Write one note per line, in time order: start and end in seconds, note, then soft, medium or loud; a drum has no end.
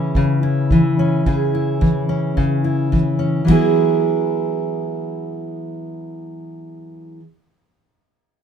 0.00 0.15 C#3 medium
0.00 0.72 E3 medium
0.00 0.98 C#4 medium
0.00 0.43 E4 soft
0.00 1.27 G#4 medium
0.15 1.25 C#3 medium
0.15 kick medium
0.43 1.54 E4 medium
0.71 1.81 E3 medium
0.71 kick loud
0.99 2.08 C#4 medium
1.26 2.36 C#3 medium
1.26 3.50 G#4 medium
1.26 kick medium
1.55 2.64 E4 soft
1.81 2.92 E3 medium
1.81 kick medium
2.09 3.18 C#4 soft
2.37 3.44 C#3 medium
2.37 kick medium
2.64 3.49 E4 soft
2.92 3.45 E3 medium
2.92 kick medium
3.19 3.48 C#4 soft
3.45 7.20 E3 medium
3.45 7.21 F#3 medium
3.45 7.21 B3 medium
3.45 kick medium
3.45 ride medium
3.50 7.22 E4 medium
3.50 7.23 G#4 medium